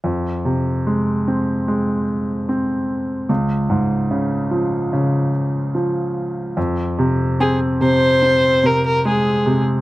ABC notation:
X:1
M:4/4
L:1/16
Q:1/4=73
K:Fm
V:1 name="Violin"
z16 | z16 | z4 A2 c4 B B A3 z |]
V:2 name="Grand piano" clef=bass
F,,2 C,2 A,2 C2 A,4 C4 | D,,2 A,,2 D,2 F,2 D,4 F,4 | F,,2 C,2 C2 C,2 C2 C,2 A,2 C,2 |]